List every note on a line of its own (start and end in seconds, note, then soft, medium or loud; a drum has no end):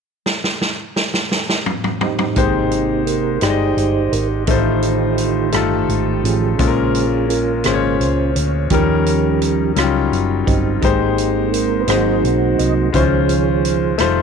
0.26 snare medium
0.44 snare medium
0.61 snare medium
0.96 snare medium
1.14 snare medium
1.32 snare medium
1.49 snare medium
1.66 mid tom medium
1.84 mid tom medium
2.01 3.04 C4 soft
2.01 3.04 D#4 soft
2.01 2.36 G4 medium
2.01 mid tom medium
2.19 mid tom medium
2.36 3.38 G#1 medium
2.36 3.39 G#2 medium
2.36 3.38 C3 soft
2.36 3.09 G#3 medium
2.36 3.39 A#3 soft
2.36 3.10 D#4 medium
2.36 3.39 G4 soft
2.36 3.10 G4 medium
2.36 3.10 C5 medium
2.36 kick medium
2.36 closed hi-hat medium
2.71 closed hi-hat soft
3.06 3.43 A#4 medium
3.06 closed hi-hat medium
3.41 3.75 G1 medium
3.41 4.15 G#3 medium
3.41 4.15 D#4 soft
3.41 4.44 D#4 medium
3.41 4.44 G4 medium
3.41 4.16 G4 soft
3.41 4.14 C5 medium
3.41 3.50 D5 soft
3.41 cross-stick medium
3.41 closed hi-hat medium
3.50 4.19 D#5 medium
3.77 4.10 G1 medium
3.77 closed hi-hat soft
4.12 4.45 G#1 medium
4.12 4.28 A#4 medium
4.12 closed hi-hat medium
4.47 5.50 A1 medium
4.47 5.50 A2 soft
4.47 6.22 D#3 soft
4.47 6.23 A3 soft
4.47 5.21 A3 medium
4.47 5.50 D#4 medium
4.47 5.22 D#4 medium
4.47 5.50 F4 medium
4.47 5.22 F4 medium
4.47 6.55 G4 soft
4.47 5.23 C5 medium
4.47 5.22 C5 medium
4.47 kick medium
4.47 closed hi-hat medium
4.82 closed hi-hat soft
5.18 closed hi-hat medium
5.52 5.86 G1 medium
5.52 6.26 A3 medium
5.52 6.27 D#4 medium
5.52 6.27 F4 medium
5.52 6.27 A4 medium
5.52 cross-stick medium
5.52 closed hi-hat medium
5.89 6.21 G#1 medium
5.89 closed hi-hat soft
6.23 6.56 A1 medium
6.23 6.55 D#3 soft
6.23 6.55 F3 soft
6.23 6.56 A3 soft
6.23 7.26 C#4 soft
6.23 7.26 F4 soft
6.23 7.34 G#4 medium
6.23 closed hi-hat medium
6.58 7.61 A#1 medium
6.58 7.61 A#2 medium
6.58 7.05 C#3 soft
6.58 7.06 G#3 soft
6.58 7.32 G#3 medium
6.58 7.32 C#4 medium
6.58 7.33 F4 medium
6.58 6.67 A4 medium
6.58 7.06 C5 medium
6.58 kick medium
6.58 closed hi-hat medium
6.67 7.36 A#4 medium
6.95 closed hi-hat soft
7.29 8.31 C#4 medium
7.29 8.31 F4 medium
7.29 8.02 A#4 medium
7.29 closed hi-hat medium
7.64 8.01 G#1 medium
7.64 7.96 C#3 soft
7.64 7.96 G#3 soft
7.64 8.38 G#3 medium
7.64 7.97 A#3 soft
7.64 8.39 C#4 medium
7.64 8.39 F4 medium
7.64 7.73 C5 medium
7.64 cross-stick medium
7.64 closed hi-hat medium
7.74 8.43 C#5 medium
8.00 8.32 C#2 medium
8.00 8.37 C5 medium
8.00 closed hi-hat soft
8.34 8.68 D2 medium
8.34 8.68 C#5 medium
8.34 closed hi-hat medium
8.70 9.72 D#2 medium
8.70 9.73 D#3 medium
8.70 9.72 F3 soft
8.70 9.72 G3 soft
8.70 9.44 G3 medium
8.70 9.73 C#4 medium
8.70 9.45 C#4 medium
8.70 9.45 D#4 medium
8.70 9.73 G4 medium
8.70 9.46 A#4 medium
8.70 9.45 A#4 medium
8.70 kick medium
8.70 closed hi-hat medium
9.06 closed hi-hat soft
9.42 closed hi-hat medium
9.76 10.09 C#2 medium
9.76 9.83 F#3 medium
9.76 10.50 C#4 medium
9.76 10.50 D#4 medium
9.76 10.50 F4 medium
9.76 cross-stick medium
9.76 closed hi-hat medium
9.82 10.53 G3 medium
10.12 10.44 F#1 medium
10.12 closed hi-hat soft
10.46 10.80 G1 medium
10.46 10.82 C4 soft
10.46 11.49 D#4 soft
10.46 11.48 G4 medium
10.46 kick medium
10.46 closed hi-hat medium
10.82 11.84 G#1 medium
10.82 11.85 G#2 medium
10.82 11.55 G#3 medium
10.82 11.84 G#3 soft
10.82 11.84 A#3 soft
10.82 11.85 C4 soft
10.82 11.56 D#4 medium
10.82 11.56 G4 medium
10.82 11.57 C5 medium
10.82 kick medium
10.82 closed hi-hat medium
11.18 closed hi-hat soft
11.46 11.53 A4 soft
11.53 11.82 A#4 medium
11.53 closed hi-hat medium
11.80 11.88 B4 medium
11.87 12.20 G#1 medium
11.87 12.90 G#2 medium
11.87 12.89 F#3 soft
11.87 12.61 G#3 medium
11.87 12.89 A#3 soft
11.87 12.90 C4 medium
11.87 12.61 D#4 medium
11.87 12.90 D#4 medium
11.87 12.90 F#4 medium
11.87 12.62 F#4 medium
11.87 12.61 C5 medium
11.87 12.62 C5 medium
11.87 cross-stick medium
11.87 closed hi-hat medium
12.24 12.56 B1 medium
12.24 closed hi-hat soft
12.59 12.91 C2 medium
12.59 12.74 D#5 medium
12.59 closed hi-hat medium
12.92 14.01 C#2 medium
12.92 13.95 C#3 medium
12.92 13.96 D#3 soft
12.92 13.96 F3 soft
12.92 13.66 G#3 medium
12.92 13.67 C#4 medium
12.92 13.00 E4 medium
12.92 13.96 F4 medium
12.92 13.96 G#4 medium
12.92 13.67 C5 medium
12.92 13.96 C5 soft
12.92 13.70 C#5 medium
12.92 kick medium
12.92 closed hi-hat medium
13.01 13.70 F4 medium
13.29 closed hi-hat soft
13.65 closed hi-hat medium
13.98 14.22 F1 medium
13.98 14.22 D#3 soft
13.98 14.22 G3 soft
13.98 14.22 A3 medium
13.98 14.22 A3 soft
13.98 14.22 D#4 medium
13.98 14.22 F4 medium
13.98 14.22 C5 medium
13.98 cross-stick medium
13.98 closed hi-hat medium